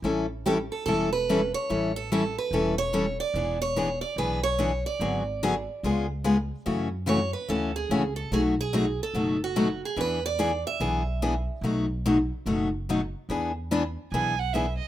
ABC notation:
X:1
M:4/4
L:1/8
Q:"Swing" 1/4=145
K:Emix
V:1 name="Violin"
z8 | z8 | z8 | z8 |
z8 | z8 | z8 | z8 |
z4 g f e ^d |]
V:2 name="Steel-string acoustic guitar"
z2 =G A A B2 c- | c A A B2 c2 d- | d c2 d B c2 d- | d4- d z3 |
z2 c B A G2 A | G G2 A2 F2 G | B d2 e4 z | z8 |
z8 |]
V:3 name="Steel-string acoustic guitar"
[E,=G,CEA] z [E,G,CEA] z [E,G,CEA] z [E,G,CEA] z | [E,=G,CEA] z [E,G,CEA] z [E,G,CEA] z [E,G,CEA] z | [E,B,DG] z [E,B,DG] z [E,B,DG] z [E,B,DG] z | [D,F,B,FG] z [D,F,B,FG] z [C,G,B,^EG] z [C,G,B,EG] z |
[C,E,A,CF] z [C,E,A,CF] z [C,E,A,CF] z [C,E,A,CF] z | [B,,F,A,^DF] z [B,,F,A,DF] z [B,,F,A,DF] z [B,,F,A,DF] z | [E,B,DG] z [E,B,DG] z [E,B,DG] z [E,B,DG] z | [B,,F,A,^DF] z [B,,F,A,DF] z [B,,F,A,DF] z [B,,F,A,DF] z |
[E,B,DG] z [E,B,DG] z [E,B,DG] z [E,B,DG] z |]
V:4 name="Upright bass" clef=bass
A,,,4 E,,,4 | A,,,4 E,,,4 | E,,,4 B,,,4 | G,,,4 C,,4 |
F,,4 D,,2 C,,2 | B,,,4 F,,,4 | E,,4 B,,,4 | B,,,4 F,,,4 |
E,,4 B,,,4 |]